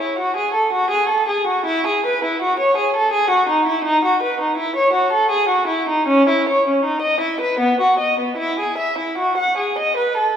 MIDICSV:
0, 0, Header, 1, 2, 480
1, 0, Start_track
1, 0, Tempo, 743494
1, 1070, Time_signature, 3, 2, 24, 8
1, 1547, Tempo, 728155
1, 3467, Tempo, 763359
1, 4907, Tempo, 797872
1, 6572, End_track
2, 0, Start_track
2, 0, Title_t, "Violin"
2, 0, Program_c, 0, 40
2, 1, Note_on_c, 0, 64, 53
2, 109, Note_off_c, 0, 64, 0
2, 121, Note_on_c, 0, 66, 64
2, 229, Note_off_c, 0, 66, 0
2, 234, Note_on_c, 0, 68, 65
2, 345, Note_off_c, 0, 68, 0
2, 349, Note_on_c, 0, 69, 56
2, 462, Note_off_c, 0, 69, 0
2, 469, Note_on_c, 0, 66, 68
2, 581, Note_off_c, 0, 66, 0
2, 584, Note_on_c, 0, 68, 78
2, 699, Note_off_c, 0, 68, 0
2, 704, Note_on_c, 0, 69, 68
2, 821, Note_off_c, 0, 69, 0
2, 828, Note_on_c, 0, 68, 65
2, 946, Note_off_c, 0, 68, 0
2, 949, Note_on_c, 0, 66, 64
2, 1070, Note_off_c, 0, 66, 0
2, 1070, Note_on_c, 0, 64, 90
2, 1192, Note_off_c, 0, 64, 0
2, 1207, Note_on_c, 0, 68, 67
2, 1319, Note_off_c, 0, 68, 0
2, 1332, Note_on_c, 0, 71, 72
2, 1439, Note_off_c, 0, 71, 0
2, 1448, Note_on_c, 0, 64, 64
2, 1554, Note_off_c, 0, 64, 0
2, 1562, Note_on_c, 0, 66, 74
2, 1670, Note_off_c, 0, 66, 0
2, 1676, Note_on_c, 0, 73, 74
2, 1786, Note_off_c, 0, 73, 0
2, 1794, Note_on_c, 0, 68, 66
2, 1905, Note_off_c, 0, 68, 0
2, 1920, Note_on_c, 0, 69, 71
2, 2028, Note_on_c, 0, 68, 88
2, 2029, Note_off_c, 0, 69, 0
2, 2143, Note_off_c, 0, 68, 0
2, 2145, Note_on_c, 0, 66, 75
2, 2261, Note_off_c, 0, 66, 0
2, 2268, Note_on_c, 0, 63, 70
2, 2382, Note_off_c, 0, 63, 0
2, 2388, Note_on_c, 0, 64, 65
2, 2498, Note_on_c, 0, 63, 92
2, 2501, Note_off_c, 0, 64, 0
2, 2616, Note_off_c, 0, 63, 0
2, 2635, Note_on_c, 0, 66, 72
2, 2744, Note_off_c, 0, 66, 0
2, 2753, Note_on_c, 0, 71, 69
2, 2863, Note_off_c, 0, 71, 0
2, 2874, Note_on_c, 0, 63, 56
2, 2982, Note_on_c, 0, 64, 68
2, 2984, Note_off_c, 0, 63, 0
2, 3099, Note_off_c, 0, 64, 0
2, 3104, Note_on_c, 0, 73, 76
2, 3217, Note_on_c, 0, 66, 71
2, 3222, Note_off_c, 0, 73, 0
2, 3340, Note_off_c, 0, 66, 0
2, 3345, Note_on_c, 0, 69, 72
2, 3462, Note_on_c, 0, 68, 83
2, 3466, Note_off_c, 0, 69, 0
2, 3580, Note_on_c, 0, 66, 70
2, 3582, Note_off_c, 0, 68, 0
2, 3696, Note_on_c, 0, 64, 68
2, 3701, Note_off_c, 0, 66, 0
2, 3821, Note_off_c, 0, 64, 0
2, 3830, Note_on_c, 0, 63, 66
2, 3948, Note_on_c, 0, 61, 94
2, 3951, Note_off_c, 0, 63, 0
2, 4071, Note_off_c, 0, 61, 0
2, 4083, Note_on_c, 0, 64, 70
2, 4197, Note_off_c, 0, 64, 0
2, 4208, Note_on_c, 0, 73, 69
2, 4317, Note_off_c, 0, 73, 0
2, 4327, Note_on_c, 0, 61, 57
2, 4433, Note_on_c, 0, 63, 65
2, 4435, Note_off_c, 0, 61, 0
2, 4540, Note_on_c, 0, 75, 73
2, 4547, Note_off_c, 0, 63, 0
2, 4659, Note_on_c, 0, 64, 57
2, 4661, Note_off_c, 0, 75, 0
2, 4780, Note_off_c, 0, 64, 0
2, 4786, Note_on_c, 0, 71, 69
2, 4902, Note_on_c, 0, 59, 84
2, 4905, Note_off_c, 0, 71, 0
2, 5020, Note_off_c, 0, 59, 0
2, 5029, Note_on_c, 0, 66, 63
2, 5141, Note_on_c, 0, 75, 64
2, 5143, Note_off_c, 0, 66, 0
2, 5260, Note_off_c, 0, 75, 0
2, 5266, Note_on_c, 0, 59, 52
2, 5370, Note_on_c, 0, 64, 74
2, 5384, Note_off_c, 0, 59, 0
2, 5497, Note_off_c, 0, 64, 0
2, 5506, Note_on_c, 0, 68, 60
2, 5617, Note_on_c, 0, 76, 63
2, 5626, Note_off_c, 0, 68, 0
2, 5739, Note_on_c, 0, 64, 51
2, 5741, Note_off_c, 0, 76, 0
2, 5857, Note_on_c, 0, 66, 65
2, 5862, Note_off_c, 0, 64, 0
2, 5975, Note_on_c, 0, 78, 64
2, 5981, Note_off_c, 0, 66, 0
2, 6095, Note_on_c, 0, 68, 55
2, 6099, Note_off_c, 0, 78, 0
2, 6218, Note_off_c, 0, 68, 0
2, 6221, Note_on_c, 0, 75, 68
2, 6332, Note_on_c, 0, 71, 74
2, 6341, Note_off_c, 0, 75, 0
2, 6454, Note_on_c, 0, 69, 60
2, 6457, Note_off_c, 0, 71, 0
2, 6572, Note_off_c, 0, 69, 0
2, 6572, End_track
0, 0, End_of_file